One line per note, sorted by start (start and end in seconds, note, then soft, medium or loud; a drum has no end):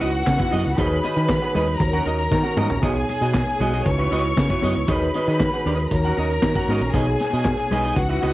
0.00 0.22 C#2 medium
0.00 0.75 C#3 medium
0.00 0.76 C#4 medium
0.00 0.76 D#4 medium
0.00 0.76 E4 medium
0.00 0.21 E4 medium
0.00 0.76 F#4 medium
0.00 0.77 F#4 medium
0.00 0.12 F#4 medium
0.00 0.77 B4 medium
0.00 0.11 B4 medium
0.00 0.11 D#5 medium
0.00 0.76 F#5 medium
0.00 closed hi-hat medium
0.00 muted conga soft
0.12 muted clean electric guitar stroke soft
0.12 closed hi-hat soft
0.25 0.37 C#3 medium
0.25 muted clean electric guitar stroke soft
0.25 kick medium
0.25 snare loud
0.25 clap medium
0.25 high conga medium
0.38 0.50 E4 medium
0.38 0.50 F#4 medium
0.38 0.51 B4 medium
0.38 0.52 E5 medium
0.38 kick medium
0.38 closed hi-hat soft
0.38 high conga soft
0.51 0.63 F#2 medium
0.51 0.72 E4 medium
0.51 0.64 F#4 medium
0.51 0.64 B4 medium
0.51 0.64 D#5 medium
0.51 open hi-hat medium
0.51 high conga medium
0.65 0.76 C#2 medium
0.65 muted clean electric guitar stroke medium
0.65 closed hi-hat soft
0.76 0.98 D#2 loud
0.76 1.77 D#3 medium
0.76 0.98 D#4 medium
0.76 1.78 D#4 medium
0.76 1.79 F#4 medium
0.76 0.98 G#4 medium
0.76 1.79 G#4 medium
0.76 0.99 B4 medium
0.76 1.79 B4 medium
0.76 0.85 C5 medium
0.76 0.99 D#5 medium
0.76 1.79 B5 medium
0.76 kick loud
0.76 closed hi-hat medium
0.76 muted conga soft
0.85 1.82 C#5 medium
1.03 1.16 D#4 medium
1.03 1.16 G#4 medium
1.03 1.15 B4 medium
1.03 1.15 D#5 medium
1.03 closed hi-hat medium
1.03 muted conga medium
1.16 1.37 D#3 medium
1.16 1.27 D#4 medium
1.16 1.28 G#4 medium
1.16 1.29 B4 medium
1.16 1.29 D#5 medium
1.16 closed hi-hat soft
1.29 muted clean electric guitar stroke soft
1.29 kick loud
1.29 snare loud
1.29 clap medium
1.29 high conga medium
1.42 1.53 D#4 soft
1.42 1.54 G#4 soft
1.42 1.54 B4 soft
1.42 1.56 F#5 medium
1.42 closed hi-hat soft
1.54 1.75 D#2 medium
1.54 1.75 D#4 medium
1.54 1.67 G#4 medium
1.54 1.67 B4 medium
1.54 1.67 D#5 medium
1.54 closed hi-hat medium
1.54 low conga medium
1.67 muted clean electric guitar stroke soft
1.67 closed hi-hat medium
1.78 2.01 D#2 medium
1.78 2.80 D#3 medium
1.78 2.80 D#4 medium
1.78 2.81 F#4 medium
1.78 2.81 A#4 medium
1.78 1.87 C5 medium
1.78 2.81 A#5 medium
1.78 muted clean electric guitar stroke soft
1.78 kick loud
1.78 closed hi-hat medium
1.87 2.83 C#5 medium
1.93 2.05 C#4 medium
1.93 2.05 F#4 medium
1.93 2.06 A#4 medium
1.93 2.07 F#5 medium
1.93 closed hi-hat soft
2.06 2.27 D#2 medium
2.06 2.22 C#4 medium
2.06 2.18 F#4 medium
2.06 2.18 A#4 medium
2.06 2.18 D#5 medium
2.06 closed hi-hat medium
2.06 muted conga soft
2.19 muted clean electric guitar stroke soft
2.19 closed hi-hat soft
2.31 2.42 D#3 medium
2.31 muted clean electric guitar stroke soft
2.31 kick loud
2.31 snare soft
2.31 high conga medium
2.43 2.56 C#4 medium
2.43 2.56 F#4 medium
2.43 2.56 A#4 medium
2.43 2.58 F#5 medium
2.43 high conga soft
2.57 2.67 G#2 medium
2.57 2.78 C#4 medium
2.57 2.70 F#4 medium
2.57 2.69 A#4 medium
2.57 2.69 D#5 medium
2.57 mid tom medium
2.57 high conga medium
2.70 2.80 A#1 medium
2.70 muted clean electric guitar stroke medium
2.70 floor tom medium
2.81 3.04 B1 loud
2.81 3.83 B2 medium
2.81 3.03 B3 medium
2.81 3.83 B3 medium
2.81 3.84 D#4 medium
2.81 2.96 F#4 medium
2.81 2.95 G#4 medium
2.81 3.84 G#4 medium
2.81 3.85 C#5 medium
2.81 2.94 D#5 medium
2.81 3.84 G#5 medium
2.81 kick loud
2.81 closed hi-hat medium
2.81 muted conga soft
2.96 muted clean electric guitar stroke soft
3.08 muted clean electric guitar stroke soft
3.08 closed hi-hat medium
3.08 muted conga medium
3.21 3.42 B2 medium
3.21 3.33 B3 medium
3.21 3.33 F#4 medium
3.21 3.34 G#4 medium
3.21 3.34 D#5 medium
3.21 closed hi-hat soft
3.34 muted clean electric guitar stroke soft
3.34 kick loud
3.34 snare loud
3.34 clap medium
3.34 high conga medium
3.47 muted clean electric guitar stroke soft
3.60 3.81 B1 medium
3.60 3.73 B3 medium
3.60 3.73 F#4 loud
3.60 3.73 G#4 medium
3.60 3.72 D#5 medium
3.60 closed hi-hat medium
3.60 low conga medium
3.73 3.85 B3 soft
3.73 3.84 F#4 medium
3.73 3.85 G#4 soft
3.73 3.85 D#5 medium
3.73 closed hi-hat medium
3.84 4.07 C#2 loud
3.84 4.86 C#3 medium
3.84 4.86 C#4 medium
3.84 4.86 D#4 medium
3.84 4.87 E4 medium
3.84 4.87 F#4 medium
3.84 4.87 B4 medium
3.84 4.86 C#5 medium
3.84 4.86 C#6 medium
3.84 muted clean electric guitar stroke soft
3.84 kick loud
3.84 closed hi-hat medium
3.98 4.10 E4 soft
3.98 4.11 F#4 medium
3.98 4.11 B4 medium
3.98 4.12 E5 medium
4.11 4.32 C#2 medium
4.11 4.32 E4 medium
4.11 4.24 F#4 medium
4.11 4.23 B4 medium
4.11 4.23 D#5 medium
4.11 closed hi-hat medium
4.11 muted conga soft
4.24 muted clean electric guitar stroke soft
4.24 closed hi-hat soft
4.37 4.48 C#3 medium
4.37 muted clean electric guitar stroke soft
4.37 kick medium
4.37 snare loud
4.37 clap medium
4.37 high conga medium
4.49 4.61 E4 soft
4.49 4.61 F#4 medium
4.49 4.62 B4 medium
4.49 4.63 E5 medium
4.49 kick medium
4.49 closed hi-hat soft
4.49 high conga soft
4.61 4.74 F#2 medium
4.61 4.83 E4 medium
4.61 4.75 F#4 medium
4.61 4.75 B4 medium
4.61 4.74 D#5 medium
4.61 open hi-hat medium
4.61 high conga medium
4.75 4.86 C#2 medium
4.75 muted clean electric guitar stroke soft
4.75 closed hi-hat soft
4.87 5.09 D#2 loud
4.87 5.88 D#3 medium
4.87 5.89 D#4 medium
4.87 5.09 D#4 medium
4.87 5.89 F#4 medium
4.87 5.09 G#4 medium
4.87 5.90 G#4 medium
4.87 5.89 B4 medium
4.87 5.09 B4 medium
4.87 5.90 C#5 medium
4.87 5.09 D#5 medium
4.87 5.89 B5 medium
4.87 kick loud
4.87 closed hi-hat medium
4.87 muted conga soft
5.01 closed hi-hat soft
5.14 5.28 D#4 medium
5.14 5.28 G#4 medium
5.14 5.27 B4 medium
5.14 5.27 D#5 medium
5.14 closed hi-hat medium
5.14 muted conga medium
5.27 5.48 D#3 medium
5.27 5.40 D#4 medium
5.27 5.40 G#4 medium
5.27 5.40 B4 medium
5.27 5.40 D#5 medium
5.27 closed hi-hat soft
5.40 muted clean electric guitar stroke soft
5.40 kick loud
5.40 snare loud
5.40 clap medium
5.40 high conga medium
5.54 5.65 D#4 soft
5.54 5.65 G#4 soft
5.54 5.65 B4 medium
5.54 5.67 F#5 medium
5.54 closed hi-hat soft
5.66 5.86 D#2 medium
5.66 5.87 D#4 medium
5.66 5.79 G#4 medium
5.66 5.78 B4 medium
5.66 5.78 D#5 medium
5.66 closed hi-hat medium
5.79 muted clean electric guitar stroke soft
5.79 closed hi-hat medium
5.89 6.12 D#2 medium
5.89 6.91 D#3 medium
5.89 6.91 D#4 medium
5.89 6.92 F#4 medium
5.89 6.92 A#4 medium
5.89 6.93 C#5 medium
5.89 6.92 A#5 medium
5.89 muted clean electric guitar stroke soft
5.89 kick loud
5.89 closed hi-hat medium
6.03 6.16 C#4 medium
6.03 6.17 F#4 medium
6.03 6.17 A#4 medium
6.03 6.18 F#5 medium
6.03 closed hi-hat soft
6.17 6.38 D#2 medium
6.17 6.33 C#4 medium
6.17 6.30 F#4 medium
6.17 6.30 A#4 medium
6.17 6.29 D#5 medium
6.17 closed hi-hat medium
6.17 muted conga soft
6.30 muted clean electric guitar stroke soft
6.30 closed hi-hat soft
6.42 6.53 D#3 medium
6.42 muted clean electric guitar stroke soft
6.42 kick loud
6.42 snare loud
6.42 clap medium
6.42 high conga medium
6.55 6.69 C#4 soft
6.55 6.69 F#4 medium
6.55 6.69 A#4 medium
6.55 6.70 F#5 medium
6.55 kick medium
6.55 high conga soft
6.68 6.79 G#2 medium
6.68 6.90 C#4 medium
6.68 6.83 F#4 medium
6.68 6.82 A#4 medium
6.68 6.82 D#5 medium
6.68 open hi-hat medium
6.68 high conga medium
6.81 6.91 A#1 medium
6.81 muted clean electric guitar stroke soft
6.81 closed hi-hat soft
6.92 7.15 B1 loud
6.92 7.94 B2 medium
6.92 7.94 B3 medium
6.92 7.95 D#4 medium
6.92 7.15 D#4 medium
6.92 7.94 G#4 medium
6.92 7.95 G#4 medium
6.92 7.07 G#4 medium
6.92 7.07 B4 medium
6.92 7.95 C#5 medium
6.92 7.06 D#5 medium
6.92 7.94 G#5 medium
6.92 kick loud
6.92 closed hi-hat medium
6.92 muted conga soft
7.07 muted clean electric guitar stroke soft
7.19 muted clean electric guitar stroke soft
7.19 snare soft
7.19 closed hi-hat medium
7.19 muted conga medium
7.32 7.53 B2 medium
7.32 7.45 D#4 medium
7.32 7.45 G#4 medium
7.32 7.45 B4 medium
7.32 7.46 D#5 medium
7.32 closed hi-hat soft
7.45 muted clean electric guitar stroke soft
7.45 kick loud
7.45 snare loud
7.45 clap medium
7.45 high conga medium
7.58 muted clean electric guitar stroke soft
7.58 closed hi-hat soft
7.71 7.92 B1 medium
7.71 7.85 D#4 medium
7.71 7.85 G#4 medium
7.71 7.84 B4 medium
7.71 7.84 D#5 medium
7.71 closed hi-hat medium
7.71 low conga medium
7.84 7.97 D#4 soft
7.84 7.98 G#4 medium
7.84 7.97 B4 soft
7.84 7.97 D#5 medium
7.84 closed hi-hat soft
7.95 8.17 C#2 loud
7.95 8.33 C#3 medium
7.95 8.33 C#4 medium
7.95 8.33 D#4 medium
7.95 8.33 E4 medium
7.95 8.33 F#4 medium
7.95 8.33 B4 medium
7.95 8.33 F#5 medium
7.95 muted clean electric guitar stroke soft
7.95 kick loud
7.95 closed hi-hat medium
8.08 8.20 E4 soft
8.08 8.21 F#4 medium
8.08 8.21 B4 medium
8.08 8.22 E5 medium
8.08 closed hi-hat soft
8.22 8.33 C#2 medium
8.22 8.33 E4 medium
8.22 8.33 F#4 medium
8.22 8.33 B4 medium
8.22 8.33 D#5 medium
8.22 closed hi-hat medium
8.22 muted conga medium